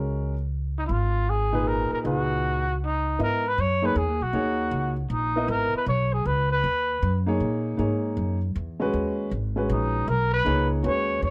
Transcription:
Already playing: C#2 G#3 C#4 F#4 A#4
0.78 D#4
0.86 G#1 E4
0.92 F4
1.30 G#4
1.52 A#2 D#4 G#4 B4
1.68 A#4
1.92 A#4, muted upright bass stroke
2.04 C#2 A#2 D#4 F#4 G#4 B4
2.85 D#4
3.19 G#2 B3 E4 A#4 D#5
3.48 B4
3.58 F#2 C#5
3.82 A#3 D#4 G#4 B4 C#5
3.96 E2 G#4
4.08 D#2
4.21 B1 F#4
4.33 D#2 A#3 D#4 G#4 C#5
4.71 C#2
5.10 A#1 D#4
5.36 B3 E4 A#4 D#5
5.48 G#1 A#4
5.73 B4, muted upright bass stroke
5.86 B1 C#5
6.13 G#4
6.25 C#2 B4
6.51 B4
6.64 D#2
7.02 F#2
7.26 A#3 D#4 G#4 C#5
7.40 A#2
7.77 G#2 A#3 D#4 G#4 C#5
8.17 F#2
8.55 E2
8.80 G#3 C#4 F#4 B4
8.93 D#2
9.31 G#1
9.56 G#3 C#4 F#4 B4
9.69 A#1 D#4
10.08 B1 A#4
10.33 B4
10.45 C#2 A#3 D#4 G#4 C#5
10.83 D#2 G#3 C#4 F#4 B4 C#5
11.22 E2 C#5

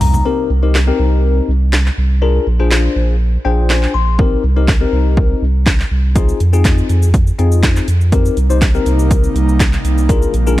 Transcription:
Already playing: C3 G3 A#3 D#4
0.01 C2 A#5, mid tom, open hi-hat, shaker
0.14 floor tom, shaker
0.25 C4 D#4 G4 A#4
0.50 C2
0.63 C4 D#4 G4 A#4
0.75 snare, clap
0.87 C4 D#4 G4 A#4
0.99 C2
1.48 C2
1.73 snare, clap
1.86 clap
1.98 C2
2.22 D4 F4 G#4 A#4
2.47 A#1
2.59 D4 F4 G#4 C5
2.71 snare, clap
2.96 A#1
3.45 A#1 D4 F4 G#4 C5 G5
3.70 G#5, snare, clap
3.83 clap
3.94 A#1 C6
4.19 C4 D#4 G4 A#4, kick
4.43 C2
4.56 C4 D#4 G4 A#4
4.68 kick, snare, clap
4.81 C4 D#4 G4 A#4
4.92 C2
5.17 kick
5.42 C2
5.66 kick, snare, clap
5.80 clap
5.91 C2
6.15 C4 D#4 F4 G#4, kick, closed hi-hat, shaker
6.29 shaker
6.40 F2, closed hi-hat, shaker
6.53 C4 D#4 F4 G#4, shaker
6.65 kick, snare, clap, closed hi-hat, shaker
6.78 shaker
6.89 F2, closed hi-hat, shaker
7.02 shaker
7.14 kick, closed hi-hat, shaker
7.27 shaker
7.38 F2 C4 D#4 F4 G#4, closed hi-hat, shaker
7.52 shaker
7.63 kick, snare, clap, closed hi-hat, shaker
7.76 clap, shaker
7.88 F2, closed hi-hat, shaker
8.01 shaker
8.12 C3 G3 A#3 C4 D#4 G4 A#4, kick, closed hi-hat, shaker
8.26 shaker
8.37 C2, closed hi-hat, shaker
8.50 C4 D#4 G4 C5, shaker
8.62 kick, snare, clap, closed hi-hat, shaker
8.74 C4 D#4 G4 A#4, shaker
8.86 C2, closed hi-hat, shaker
8.99 shaker
9.11 kick, closed hi-hat, shaker
9.24 shaker
9.35 C2, closed hi-hat, shaker
9.49 shaker
9.60 kick, snare, clap, closed hi-hat, shaker
9.73 clap, shaker
9.84 C2, closed hi-hat, shaker
9.98 shaker
10.09 D3 G#3 A#3 D4 F4 G#4 A#4, kick, closed hi-hat, shaker
10.22 shaker
10.34 A#1, closed hi-hat, shaker
10.47 D4 F4 G#4 A#4, shaker

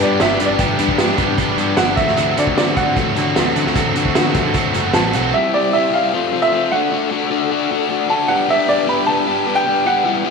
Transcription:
0.01 G2 B3 D4 G4 D5
0.20 G1 B3 D4 G4 E5, snare, closed hi-hat
0.40 G2 B3 D4 G4, closed hi-hat
0.46 G1 D5
0.59 G1 B3 D4 G4 G5, kick, closed hi-hat
0.78 G2 B3 D4 G4, closed hi-hat
0.89 G1, kick
0.98 G2 B3 D4 G4, snare, closed hi-hat
1.18 G1 B3 D4 G4, kick, closed hi-hat
1.28 G2
1.38 G1 B3 D4 G4, kick, closed hi-hat
1.57 G2 B3 D4 G4, closed hi-hat
1.77 G1 B3 D4 G4 F#5, snare, closed hi-hat
1.96 D2 F#3 A3 C4 F#4 E5, kick, closed hi-hat
2.08 D2, snare
2.16 D2 F#3 A3 C4 F#4, closed hi-hat
2.35 D3 F#3 A3 C4 F#4 D5, closed hi-hat
2.47 D2, kick
2.56 D3 F#3 A3 C4 F#4 D5, snare, closed hi-hat
2.76 D2 F#3 A3 C4 F#4 F#5, kick, closed hi-hat
2.87 D3
2.96 D2 F#3 A3 C4 F#4, kick, closed hi-hat
3.15 D3 F#3 A3 C4 F#4, closed hi-hat
3.34 D2 F#3 A3 C4 F#4, snare, closed hi-hat
3.55 D3 F#3 A3 C4 F#4, closed hi-hat
3.66 D2, snare
3.75 D2 F#3 A3 C4 F#4, kick, closed hi-hat
3.95 D3 F#3 A3 C4 F#4, closed hi-hat
4.05 D2, kick
4.14 D3 F#3 A3 C4 F#4, snare, closed hi-hat
4.34 D2 F#3 A3 C4 F#4, kick, closed hi-hat
4.45 D3
4.53 D2 F#3 A3 C4 F#4, kick, closed hi-hat
4.74 F#1 F#3 A3 C4 F#4, closed hi-hat
4.93 A1 F#3 A3 C4 F#4 A5, snare, closed hi-hat
5.13 B1 F#3 A3 C4 F#4 F#5, closed hi-hat
5.33 G3 C4 E4 G4 C5 E5 C6
5.54 G3 C4 E4 G4 D5
5.73 G3 C4 E4 G4 E5
5.92 G3 C4 E4 G4 F5
6.13 A3 C4 F4 A4 C5 F5
6.33 A3 C4 F4
6.42 E5
6.52 A3 C4 F4
6.72 A3 D4 F#4 D5 F#5 D6
6.91 A3 D4 F#4
7.11 A3 D4 F#4
7.31 A3 D4 F#4
7.51 A3 D4 F#4
7.71 A3 D4 F#4
7.90 A3 D4 F#4
8.09 A3 D4 F#4 A5
8.28 B3 D4 G4 B4 F#5 G5
8.48 B3 D4 G4 E5
8.68 B3 D4 G4 D5
8.87 B3 D4 G4 B5
9.06 B3 D4 G4 A5
9.27 B3 D4 G4
9.47 B3 D4 G4
9.55 G5
9.67 B3 D4 G4
9.86 B3 D4 G4 F#5
10.04 G3 B3 E4 G4 E5 F#5 B5
10.24 G3 B3 E4 G4

